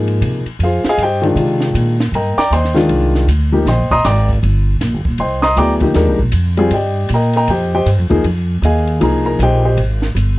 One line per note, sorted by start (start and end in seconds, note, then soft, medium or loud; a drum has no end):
0.00 0.21 G#2 medium
0.00 0.41 F3 medium
0.00 0.41 A#3 medium
0.00 0.42 D#4 medium
0.00 0.42 G#4 medium
0.08 ride soft
0.21 0.44 C3 medium
0.21 hi-hat pedal medium
0.21 ride medium
0.46 muted upright bass stroke soft
0.46 ride soft
0.59 0.82 F2 medium
0.59 ride medium
0.63 0.86 F4 medium
0.63 0.86 G#4 medium
0.63 0.86 C5 medium
0.63 0.86 F5 medium
0.84 muted upright bass stroke soft
0.84 snare medium
0.84 ride soft
0.89 1.00 G#4 medium
0.89 1.00 D#5 medium
0.89 1.00 F5 medium
0.89 1.00 G#5 loud
0.98 1.35 G2 medium
0.98 hi-hat pedal medium
0.98 ride medium
1.03 1.25 G4 medium
1.03 1.25 C5 medium
1.03 1.25 D#5 medium
1.03 1.24 G5 medium
1.22 1.34 D#3 medium
1.22 1.34 G#3 medium
1.22 1.35 D4 medium
1.22 1.36 F4 medium
1.22 ride soft
1.36 1.73 C3 medium
1.36 1.94 D#3 medium
1.36 1.94 G#3 soft
1.36 1.94 D4 soft
1.36 1.95 F4 medium
1.36 ride medium
1.61 snare soft
1.74 2.11 A#2 medium
1.74 hi-hat pedal medium
1.74 ride medium
2.00 snare medium
2.00 ride medium
2.12 2.35 G2 medium
2.12 2.38 A#4 medium
2.12 2.37 G5 medium
2.12 2.36 A#5 medium
2.12 ride medium
2.16 2.39 D#5 medium
2.37 2.51 D5 medium
2.37 2.51 G5 medium
2.37 2.51 A#5 medium
2.37 2.51 D6 loud
2.37 muted upright bass stroke soft
2.37 snare soft
2.51 2.88 D#2 medium
2.51 2.76 C5 medium
2.51 2.76 D#5 medium
2.51 2.76 G5 medium
2.51 2.76 C6 medium
2.51 hi-hat pedal medium
2.51 ride medium
2.65 snare soft
2.74 3.25 D#3 medium
2.74 3.25 G#3 medium
2.74 3.25 D4 medium
2.74 3.25 F4 medium
2.74 snare soft
2.74 ride soft
2.89 3.26 C2 medium
2.89 ride medium
3.15 snare soft
3.27 3.65 D2 medium
3.27 hi-hat pedal medium
3.27 ride medium
3.52 3.65 F3 medium
3.52 3.65 A#3 medium
3.52 3.65 D#4 medium
3.52 3.65 G4 medium
3.66 3.80 A#1 medium
3.66 3.91 C5 medium
3.66 3.91 D#5 medium
3.66 3.91 G5 medium
3.66 3.90 C6 medium
3.66 snare soft
3.66 ride medium
3.79 3.91 G1 medium
3.91 4.04 D#1 medium
3.91 4.05 D#5 medium
3.91 4.04 A#5 loud
3.91 4.05 C6 medium
3.91 4.05 D#6 loud
3.91 kick medium
4.04 4.42 G#1 medium
4.04 4.29 D5 medium
4.04 4.29 G5 medium
4.04 4.29 A#5 medium
4.04 4.29 D6 medium
4.04 snare soft
4.04 hi-hat pedal medium
4.04 ride medium
4.29 kick medium
4.43 4.80 G1 loud
4.43 ride medium
4.81 4.94 A#1 medium
4.81 snare soft
4.81 hi-hat pedal medium
4.81 ride medium
4.94 5.06 G1 medium
5.05 5.18 D#1 medium
5.05 kick medium
5.18 5.56 C2 medium
5.18 5.44 C5 medium
5.18 5.42 D#5 medium
5.18 5.43 G5 medium
5.18 5.42 C6 medium
5.18 ride medium
5.42 5.57 D#5 medium
5.42 5.57 A#5 medium
5.42 5.57 C6 medium
5.42 5.56 D#6 loud
5.42 snare medium
5.56 5.94 D2 medium
5.56 5.79 F#3 medium
5.56 5.79 B3 medium
5.56 5.80 E4 medium
5.56 5.80 G#4 medium
5.56 5.73 D5 medium
5.56 5.72 G5 medium
5.56 5.73 A#5 medium
5.56 5.73 D6 loud
5.56 hi-hat pedal medium
5.56 ride medium
5.80 6.15 F3 medium
5.80 6.15 A#3 medium
5.80 6.15 D#4 medium
5.80 5.94 G4 medium
5.80 kick medium
5.80 ride medium
5.94 6.09 D#2 loud
5.94 6.17 G#3 medium
5.94 6.17 D4 medium
5.94 6.18 G4 medium
5.94 6.18 A#4 medium
5.94 snare soft
5.94 ride medium
6.09 6.19 C2 medium
6.19 6.32 A#1 medium
6.19 kick medium
6.32 6.70 F2 medium
6.32 hi-hat pedal medium
6.32 ride medium
6.57 6.70 G3 medium
6.57 6.70 C4 medium
6.57 6.71 F4 medium
6.57 6.71 G#4 medium
6.57 ride medium
6.71 7.08 G2 medium
6.71 7.09 G4 medium
6.71 7.09 D5 medium
6.71 7.08 D#5 medium
6.71 7.08 G5 medium
6.71 ride medium
7.09 7.47 A#2 medium
7.09 hi-hat pedal medium
7.09 ride medium
7.14 7.35 A#4 medium
7.14 7.35 D#5 medium
7.14 7.36 G5 medium
7.14 7.35 A#5 medium
7.33 7.49 A#4 medium
7.33 7.49 D#5 medium
7.33 7.49 A#5 loud
7.33 ride soft
7.37 7.49 G5 medium
7.48 7.85 F2 medium
7.48 7.73 G4 medium
7.48 7.74 C5 medium
7.48 7.73 D#5 medium
7.48 7.73 G5 medium
7.48 ride medium
7.75 7.87 G4 medium
7.75 7.87 C5 medium
7.75 7.87 D#5 medium
7.75 7.87 G5 medium
7.86 7.98 G2 medium
7.86 hi-hat pedal medium
7.86 ride medium
7.98 8.11 F2 medium
8.10 8.23 D#2 medium
8.10 8.23 F3 medium
8.10 8.23 A#3 medium
8.10 8.23 D#4 medium
8.10 8.23 G#4 medium
8.10 kick medium
8.10 ride medium
8.24 8.61 F2 medium
8.24 ride medium
8.62 8.99 D#2 medium
8.62 8.99 G#4 medium
8.62 8.99 D#5 medium
8.62 8.99 F5 medium
8.62 8.99 G#5 medium
8.62 hi-hat pedal medium
8.62 ride medium
8.87 ride soft
9.00 9.38 C2 medium
9.00 9.58 F3 medium
9.00 9.58 A#3 medium
9.00 9.58 D#4 medium
9.00 9.59 G#4 medium
9.00 9.25 A#4 medium
9.00 9.24 A#5 medium
9.00 ride medium
9.26 9.39 A#4 medium
9.26 9.39 A#5 medium
9.39 9.76 A#1 loud
9.39 9.64 G4 medium
9.39 9.64 C5 medium
9.39 9.64 G5 medium
9.39 hi-hat pedal medium
9.39 ride medium
9.43 9.63 D#5 medium
9.65 9.78 G4 medium
9.65 9.78 C5 medium
9.65 9.77 D#5 medium
9.65 9.78 G5 medium
9.77 10.14 G#1 medium
9.77 ride medium
10.02 snare soft
10.15 10.38 G1 medium
10.15 hi-hat pedal medium
10.15 ride medium